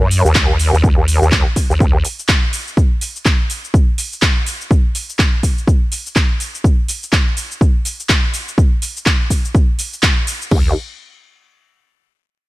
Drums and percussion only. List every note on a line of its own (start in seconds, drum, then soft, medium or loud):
0.11 open hi-hat loud
0.11 cabasa medium
0.26 cabasa soft
0.35 kick loud
0.35 clap loud
0.35 cabasa soft
0.59 open hi-hat loud
0.59 cabasa medium
0.74 cabasa soft
0.84 kick loud
0.84 cabasa soft
1.08 open hi-hat loud
1.08 cabasa medium
1.23 cabasa soft
1.32 kick loud
1.32 clap loud
1.32 cabasa soft
1.56 kick medium
1.56 open hi-hat medium
1.56 cabasa medium
1.71 cabasa soft
1.80 kick loud
1.80 cabasa soft
2.05 open hi-hat loud
2.05 cabasa medium
2.19 cabasa soft
2.29 kick loud
2.29 clap loud
2.29 cabasa soft
2.53 open hi-hat medium
2.53 cabasa medium
2.68 cabasa soft
2.77 kick loud
2.77 cabasa soft
3.01 open hi-hat loud
3.01 cabasa medium
3.16 cabasa soft
3.25 kick loud
3.25 clap loud
3.25 cabasa soft
3.50 open hi-hat medium
3.50 cabasa medium
3.65 cabasa soft
3.74 kick loud
3.74 cabasa soft
3.98 open hi-hat loud
3.98 cabasa medium
4.13 cabasa soft
4.22 kick loud
4.22 clap loud
4.22 cabasa soft
4.46 open hi-hat medium
4.46 cabasa medium
4.61 cabasa soft
4.71 kick loud
4.71 cabasa soft
4.95 open hi-hat loud
4.95 cabasa medium
5.10 cabasa soft
5.19 kick loud
5.19 clap loud
5.19 cabasa soft
5.43 kick medium
5.43 open hi-hat medium
5.43 cabasa medium
5.58 cabasa soft
5.67 kick loud
5.67 cabasa soft
5.92 open hi-hat loud
5.92 cabasa medium
6.07 cabasa soft
6.16 kick loud
6.16 clap loud
6.16 cabasa soft
6.40 open hi-hat medium
6.40 cabasa medium
6.55 cabasa soft
6.64 kick loud
6.64 cabasa soft
6.88 open hi-hat loud
6.88 cabasa medium
7.03 cabasa soft
7.13 kick loud
7.13 clap loud
7.13 cabasa soft
7.37 open hi-hat medium
7.37 cabasa medium
7.52 cabasa soft
7.61 kick loud
7.61 cabasa soft
7.85 open hi-hat loud
7.85 cabasa medium
8.00 cabasa soft
8.09 kick loud
8.09 clap loud
8.09 cabasa soft
8.34 open hi-hat medium
8.34 cabasa medium
8.48 cabasa soft
8.58 kick loud
8.58 cabasa soft
8.82 open hi-hat loud
8.82 cabasa medium
8.97 cabasa soft
9.06 kick loud
9.06 clap loud
9.06 cabasa soft
9.30 kick medium
9.30 open hi-hat medium
9.30 cabasa medium
9.45 cabasa soft
9.55 kick loud
9.55 cabasa soft
9.79 open hi-hat loud
9.79 cabasa medium
9.93 cabasa soft
10.03 kick loud
10.03 clap loud
10.03 cabasa soft
10.27 open hi-hat medium
10.27 cabasa medium
10.42 cabasa soft
10.51 kick loud
10.51 crash medium